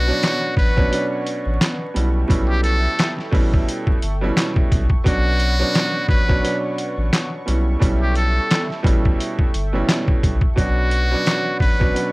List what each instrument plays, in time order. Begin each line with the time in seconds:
Already playing: sub bass B1, muted trumpet F#4, analog synth pad B4 C#5 F#5 C#6
0.08 upright piano B2 F#3 C#4 D4
0.23 snare, clap, closed hi-hat
0.57 sub bass A1, muted trumpet B4, kick, open hi-hat
0.76 upright piano B2 F#3 C#4 D4, kick
0.91 upright piano B2 F#3 C#4 D4, closed hi-hat
1.27 closed hi-hat
1.46 sub bass A1
1.61 snare, clap, closed hi-hat
1.94 sub bass B1, upright piano B2 G3 C#4 E4, analog synth pad A4 E5 G5 C#6, closed hi-hat
2.28 sub bass B1, upright piano B2 G3 C#4 E4, kick, closed hi-hat
2.49 muted trumpet G4
2.63 muted trumpet A4, closed hi-hat
2.99 snare, clap, closed hi-hat
3.18 snare
3.31 sub bass A1, upright piano B2 G3 C#4 E4, kick, open hi-hat
3.54 kick
3.69 closed hi-hat
3.87 kick
4.02 sub bass G1, closed hi-hat
4.21 upright piano B2 G3 C#4 E4
4.37 snare, clap, closed hi-hat
4.56 kick
4.72 sub bass B1, kick, closed hi-hat
4.90 kick
5.04 sub bass B1, upright piano B2 F#3 C#4 D4, muted trumpet F#4, analog synth pad B4 C#5 F#5, kick, closed hi-hat
5.40 closed hi-hat
5.59 upright piano B2 F#3 C#4 D4
5.75 snare, clap, closed hi-hat
6.08 sub bass A1, muted trumpet B4, kick, open hi-hat
6.28 upright piano B2 F#3 C#4 D4, kick
6.43 upright piano B2 F#3 C#4 D4, closed hi-hat
6.78 closed hi-hat
6.98 sub bass A1
7.13 snare, clap, closed hi-hat
7.46 sub bass B1, upright piano B2 G3 C#4 E4, analog synth pad A4 E5 G5, closed hi-hat
7.79 sub bass B1, upright piano B2 G3 C#4 E4, kick, closed hi-hat
8.02 muted trumpet G4
8.15 muted trumpet A4, closed hi-hat
8.51 snare, clap, closed hi-hat
8.70 snare
8.83 sub bass A1, upright piano B2 G3 C#4 E4, kick, closed hi-hat
9.05 kick
9.20 closed hi-hat
9.39 kick
9.54 sub bass G1, closed hi-hat
9.73 upright piano B2 G3 C#4 E4
9.89 snare, clap, closed hi-hat
10.08 kick
10.23 sub bass B1, kick, closed hi-hat
10.41 kick
10.56 sub bass B1, upright piano B2 F#3 C#4 D4, muted trumpet F#4, analog synth pad B4 C#5 F#5 C#6, kick, closed hi-hat
10.91 closed hi-hat
11.11 upright piano B2 F#3 C#4 D4
11.26 snare, clap, closed hi-hat
11.60 sub bass A1, muted trumpet B4, kick, open hi-hat
11.80 upright piano B2 F#3 C#4 D4, kick
11.94 upright piano B2 F#3 C#4 D4, closed hi-hat